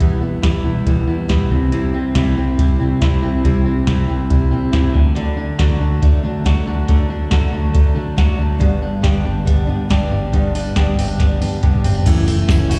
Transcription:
Already playing: clean electric guitar E3 G3 B3 E4
0.00 fingered electric bass E1, clean electric guitar E2, steel-string acoustic guitar E3 G3 B3 E4, kick, closed hi-hat
0.21 steel-string acoustic guitar G3 B3 E4
0.42 fingered electric bass E1, steel-string acoustic guitar E3 G3 B3 E4, kick, snare, closed hi-hat
0.64 fingered electric bass E1, steel-string acoustic guitar G3 B3 E4
0.86 fingered electric bass E1, steel-string acoustic guitar E3 G3 B3 E4, kick, closed hi-hat
1.07 fingered electric bass E2, steel-string acoustic guitar G3 B3 E4
1.28 fingered electric bass E1, steel-string acoustic guitar E3 G3 B3 E4, kick, snare, closed hi-hat
1.51 fingered electric bass C2, clean electric guitar C3, steel-string acoustic guitar G3 C4 E4, kick
1.72 steel-string acoustic guitar C3 G3 C4 E4, closed hi-hat
1.93 steel-string acoustic guitar G3 C4 E4
2.15 fingered electric bass C2, steel-string acoustic guitar C3 G3 C4 E4, kick, snare, closed hi-hat
2.36 fingered electric bass C2, steel-string acoustic guitar G3 C4 E4
2.57 fingered electric bass C2, steel-string acoustic guitar C3 G3 C4 E4, kick, closed hi-hat
2.80 fingered electric bass C3, steel-string acoustic guitar G3 C4 E4
3.01 fingered electric bass C2, steel-string acoustic guitar C3 G3 C4 E4, kick, snare, closed hi-hat
3.22 fingered electric bass C2, steel-string acoustic guitar G3 C4 E4
3.44 fingered electric bass C2, steel-string acoustic guitar C3 G3 C4 E4, kick, closed hi-hat
3.66 steel-string acoustic guitar G3 C4 E4
3.86 fingered electric bass C2, steel-string acoustic guitar C3 G3 C4 E4, kick, snare, closed hi-hat
4.08 fingered electric bass C2, steel-string acoustic guitar G3 C4 E4
4.30 fingered electric bass C2, steel-string acoustic guitar C3 G3 C4 E4, kick, closed hi-hat
4.51 fingered electric bass C3, steel-string acoustic guitar G3 C4 E4
4.72 fingered electric bass C2, steel-string acoustic guitar C3 G3 C4 E4, kick, snare, closed hi-hat
4.94 fingered electric bass D2, clean electric guitar D3, steel-string acoustic guitar F#3 A3 D4, kick
5.15 steel-string acoustic guitar D3 F#3 A3 D4, closed hi-hat
5.38 steel-string acoustic guitar F#3 A3 D4
5.59 fingered electric bass D2, steel-string acoustic guitar D3 F#3 A3 D4, clean electric guitar F#4, kick, snare, closed hi-hat
5.80 fingered electric bass D2, steel-string acoustic guitar F#3 A3 D4
6.02 fingered electric bass D2, steel-string acoustic guitar D3 F#3 A3 D4, kick, closed hi-hat
6.23 fingered electric bass D3, steel-string acoustic guitar F#3 A3 D4
6.44 fingered electric bass D2, steel-string acoustic guitar D3 F#3 A3 D4, clean electric guitar F#4, kick, snare, closed hi-hat
6.66 fingered electric bass D2, steel-string acoustic guitar F#3 A3 D4
6.88 fingered electric bass D2, steel-string acoustic guitar D3 F#3 A3 D4, kick, closed hi-hat
7.08 steel-string acoustic guitar F#3 A3 D4
7.31 fingered electric bass D2, steel-string acoustic guitar D3 F#3 A3 D4, clean electric guitar F#4, kick, snare, closed hi-hat
7.52 fingered electric bass D2, steel-string acoustic guitar F#3 A3 D4
7.74 fingered electric bass D2, steel-string acoustic guitar D3 F#3 A3 D4, kick, closed hi-hat
7.95 fingered electric bass D3, steel-string acoustic guitar F#3 A3 D4
8.16 fingered electric bass D2, steel-string acoustic guitar D3 F#3 A3 D4, clean electric guitar F#4, kick, snare, closed hi-hat
8.38 fingered electric bass D2, steel-string acoustic guitar F#3 A3 D4
8.59 fingered electric bass G1, steel-string acoustic guitar G2 D3 G3 B3 D4, kick, closed hi-hat
8.82 steel-string acoustic guitar G3 B3 D4
9.02 fingered electric bass G1, steel-string acoustic guitar G2 D3 G3 B3 D4, clean electric guitar G4, kick, snare, closed hi-hat
9.24 fingered electric bass G1, steel-string acoustic guitar G3 B3 D4
9.45 fingered electric bass G1, steel-string acoustic guitar D3 G3 B3 D4, kick, closed hi-hat
9.67 fingered electric bass G2, steel-string acoustic guitar G3 B3 D4
9.89 fingered electric bass G1, steel-string acoustic guitar G2 D3 G3 B3 D4, clean electric guitar G4, kick, snare, closed hi-hat
10.11 fingered electric bass G1, steel-string acoustic guitar G3 B3 D4
10.32 fingered electric bass G1, steel-string acoustic guitar G2 D3 G3 B3 D4, kick, closed hi-hat
10.54 steel-string acoustic guitar G3 B3 D4, open hi-hat
10.76 fingered electric bass G1, steel-string acoustic guitar G2 D3 G3 B3 D4, clean electric guitar G4, kick, snare, closed hi-hat
10.97 fingered electric bass G1, steel-string acoustic guitar G3 B3 D4, clean electric guitar C4, open hi-hat
11.08 clean electric guitar D4
11.20 fingered electric bass G1, steel-string acoustic guitar D3 G3 B3 D4, kick, snare, closed hi-hat
11.41 fingered electric bass G2, steel-string acoustic guitar G3 B3 D4, open hi-hat, high tom
11.63 fingered electric bass G1, steel-string acoustic guitar G2 D3 G3 B3 D4, clean electric guitar G4, kick, closed hi-hat, mid tom
11.74 mid tom
11.84 fingered electric bass G1, steel-string acoustic guitar G3 B3 D4, clean electric guitar C4, floor tom, open hi-hat
11.95 clean electric guitar D4, floor tom
12.06 fingered electric bass F#1, steel-string acoustic guitar F#2 C#3 E3 A3 E4, kick, crash, ride, tambourine
12.27 steel-string acoustic guitar E3 A3 E4, open hi-hat
12.48 fingered electric bass F#1, steel-string acoustic guitar C#3 E3 A3 E4, clean electric guitar B3, kick, snare, ride, tambourine
12.59 clean electric guitar C#4
12.70 fingered electric bass F#1, steel-string acoustic guitar E3 A3 E4, clean electric guitar F#4, open hi-hat, tambourine

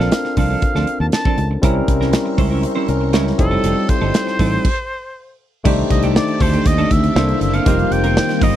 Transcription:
Already playing: tine electric piano C4 D4 F4 A4 A#4, oboe F5
0.00 clean electric guitar F3 C4 D4 A4, snare
0.12 muted clean electric guitar stroke, snare, closed hi-hat
0.25 muted clean electric guitar stroke, snare
0.37 fretless electric bass C2, clean electric guitar F3 C4 D4 A4, oboe F5, kick, open hi-hat
0.50 clean electric guitar F3 C4 D4 A4
0.62 muted clean electric guitar stroke, kick, closed hi-hat
0.75 fretless electric bass D2, clean electric guitar F3 C4 D4 A4, snare
0.87 muted clean electric guitar stroke, closed hi-hat
1.00 fretless electric bass D#2, oboe A5, muted clean electric guitar stroke
1.12 oboe A5, muted clean electric guitar stroke, snare, closed hi-hat
1.25 clean electric guitar F3 C4 D4 A4, kick
1.38 fretless electric bass C#2, muted clean electric guitar stroke, closed hi-hat
1.51 muted clean electric guitar stroke
1.62 fretless electric bass C2, tine electric piano G3 C4 C#4 E4 A#4, clean electric guitar G3 C#4 E4 A#4, string machine C5 E5 A#5 C#6, kick, closed hi-hat
1.76 muted clean electric guitar stroke
1.88 fretless electric bass C2, muted clean electric guitar stroke, kick, closed hi-hat
2.01 clean electric guitar G3 C#4 E4 A#4, snare
2.13 muted clean electric guitar stroke, snare, closed hi-hat
2.26 muted clean electric guitar stroke
2.38 fretless electric bass C#2, clean electric guitar G3 C#4 E4 C5, kick, open hi-hat
2.51 clean electric guitar G3 C#4 E4 A#4
2.63 muted clean electric guitar stroke, closed hi-hat
2.75 clean electric guitar G3 C#4 E4 C5
2.88 fretless electric bass C2, tine electric piano C#4 A#4, muted clean electric guitar stroke, closed hi-hat
3.01 muted clean electric guitar stroke
3.13 fretless electric bass C#2, clean electric guitar G3 C#4 E4 A#4, tine electric piano E4 C#5, snare, closed hi-hat
3.26 muted clean electric guitar stroke, snare
3.38 fretless electric bass F1, tine electric piano G3 C4 D#4 F4 A4, string machine A4 F5 G5 D#6, oboe A4, muted clean electric guitar stroke, kick, closed hi-hat
3.51 clean electric guitar G3 C4 D#4 A4
3.64 fretless electric bass F1, clean electric guitar G3 C4 D#4 A4, closed hi-hat
3.77 muted clean electric guitar stroke
3.89 oboe C5, muted clean electric guitar stroke, kick, closed hi-hat
4.01 fretless electric bass G1, clean electric guitar G3 C4 D#4 A4
4.14 snare, closed hi-hat
4.27 muted clean electric guitar stroke, snare
4.39 fretless electric bass A1, clean electric guitar G3 C4 D#4 A4, kick, open hi-hat
4.52 clean electric guitar G3 C4 D#4 A4
4.65 kick, crash
5.64 fretless electric bass C2, string machine D#3 C4 G4 A4 D5, clean electric guitar D#3 A3 D4 G4, tine electric piano A3 D4 D#4 G4 C5, kick, crash
5.78 muted clean electric guitar stroke
5.90 fretless electric bass C2, oboe D#5, muted clean electric guitar stroke, kick, closed hi-hat
6.03 clean electric guitar D#3 A3 D4 G4, closed hi-hat
6.16 oboe D5, snare
6.28 muted clean electric guitar stroke, closed hi-hat
6.40 fretless electric bass D2, clean electric guitar D#3 A3 D4 A4, oboe C5, kick, open hi-hat
6.53 clean electric guitar D#3 A3 D4 G4, closed hi-hat
6.66 fretless electric bass D#2, oboe D#5, muted clean electric guitar stroke, kick, closed hi-hat
6.78 clean electric guitar D#3 A3 D4 A4, closed hi-hat
6.91 fretless electric bass D2, oboe E5, muted clean electric guitar stroke, kick, closed hi-hat
7.04 muted clean electric guitar stroke, closed hi-hat
7.15 fretless electric bass C2, string machine D3 A#3 E4, tine electric piano A#3 D4 E4 A4 C5, clean electric guitar A#3 D4 E4 A4, snare
7.29 muted clean electric guitar stroke, closed hi-hat
7.41 fretless electric bass F#1, oboe E5, muted clean electric guitar stroke, closed hi-hat
7.54 clean electric guitar A#3 D4 E4 A4, oboe F5, closed hi-hat
7.65 fretless electric bass F1, string machine D#3 G3 F4, clean electric guitar G3 C4 D#4 A#4, tine electric piano A#3 D#4 F4 G4 C5, kick, closed hi-hat
7.79 muted clean electric guitar stroke, closed hi-hat
7.91 fretless electric bass F1, oboe G5, muted clean electric guitar stroke, closed hi-hat
8.04 clean electric guitar G3 C4 D#4 A#4, closed hi-hat
8.17 muted clean electric guitar stroke, snare
8.29 muted clean electric guitar stroke, snare, closed hi-hat
8.41 fretless electric bass G1, clean electric guitar G3 C4 D#4 A#4, oboe D#5, kick, open hi-hat

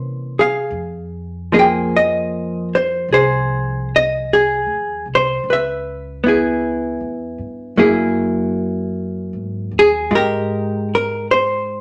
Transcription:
Already playing: upright bass C3, hollow-body jazz guitar E3 A#3 C#4 C5
0.39 hollow-body jazz guitar G#4 F5
0.71 upright bass F2
1.52 hollow-body jazz guitar F3 A#3 D#4 G#4
1.59 hollow-body jazz guitar G5
1.96 hollow-body jazz guitar D#5
2.75 hollow-body jazz guitar C5
3.08 upright bass C2
3.13 hollow-body jazz guitar G#4 C5
3.96 hollow-body jazz guitar D#5
4.33 hollow-body jazz guitar G#4
4.66 upright bass D#2
5.06 upright bass C2
5.15 hollow-body jazz guitar C5
5.44 upright bass C#2
5.50 hollow-body jazz guitar B4 E5
6.24 hollow-body jazz guitar B3 E4
6.28 hollow-body jazz guitar G#4
7.00 upright bass E2
7.38 upright bass G2
7.76 upright bass F#2, hollow-body jazz guitar F#3 A#3 E4 G#4
9.33 upright bass G#2
9.71 upright bass D#2
9.79 hollow-body jazz guitar G#4
10.10 upright bass G#2, hollow-body jazz guitar G#3 F4
10.15 hollow-body jazz guitar G4 A#4
10.95 hollow-body jazz guitar A#4
11.31 hollow-body jazz guitar C5

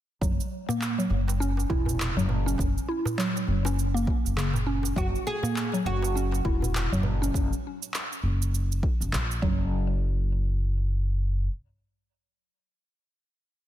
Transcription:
0.21 upright bass F#1, synth pluck F#3, kick, shaker
0.40 shaker
0.69 synth pluck A#3, darbuka dum, shaker
0.81 clap, shaker
0.98 synth pluck F#3, darbuka ka, shaker
1.10 upright bass F#1, darbuka tek
1.28 darbuka ka, darbuka tek, shaker
1.40 synth pluck C#4, shaker
1.57 darbuka tek, shaker
1.70 upright bass E1, synth pluck E4, kick, darbuka ka
1.86 darbuka dum, shaker
1.99 clap, darbuka ka, shaker
2.16 upright bass F#1, synth pluck F#3, shaker
2.29 darbuka ka, darbuka dum
2.46 synth pluck C#4, shaker
2.58 upright bass F#1, kick, darbuka tek, shaker
2.78 shaker
2.88 synth pluck E4
3.05 darbuka dum, shaker
3.18 synth pluck F#3, clap, shaker
3.36 darbuka ka, shaker
3.47 upright bass F#1, darbuka tek
3.65 synth pluck C#4, darbuka ka, darbuka tek, shaker
3.79 shaker
3.94 synth pluck A#3, shaker
4.07 kick
4.25 upright bass F#1, shaker
4.37 synth pluck C#3, clap, shaker
4.54 darbuka ka, darbuka dum, shaker
4.67 synth pluck C#4
4.83 darbuka ka, shaker
4.96 upright bass F#1, synth pluck F#3, oud F#4, kick, shaker
5.15 shaker
5.27 oud G#4
5.43 synth pluck A#3, darbuka dum, shaker
5.56 clap, shaker
5.72 synth pluck F#3, darbuka ka, shaker
5.85 upright bass F#1, oud F#4, darbuka tek
6.02 darbuka ka, darbuka tek, shaker
6.16 synth pluck C#4, shaker
6.32 darbuka tek, shaker
6.45 upright bass E1, synth pluck E4, kick, darbuka ka
6.62 darbuka dum, shaker
6.74 clap, darbuka ka, shaker
6.92 upright bass F#1, synth pluck F#3, shaker
7.03 darbuka ka, darbuka dum
7.22 synth pluck C#4, shaker
7.34 upright bass F#1, kick, shaker
7.53 shaker
7.83 shaker
7.94 clap, shaker
8.13 shaker
8.23 upright bass F#1
8.42 shaker
8.55 shaker
8.72 shaker
8.83 kick
9.00 upright bass F#1, shaker
9.13 upright bass A#1, clap, shaker
9.31 shaker
9.42 upright bass F#1, synth pluck F#3, kick

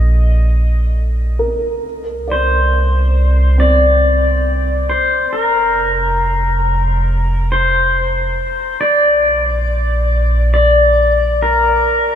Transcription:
Already playing: analog synth bass A#1, pedal steel guitar D#5
1.39 felt piano A#4
1.83 analog synth bass C2
2.28 pedal steel guitar C5, felt piano D5
3.58 felt piano C4, pedal steel guitar D5
4.90 pedal steel guitar C5
5.33 analog synth bass F1, pedal steel guitar A#4
7.52 pedal steel guitar C5
8.79 analog synth bass A#1, synth texture D5 D6, pedal steel guitar D5
10.54 pedal steel guitar D5
11.43 pedal steel guitar A#4

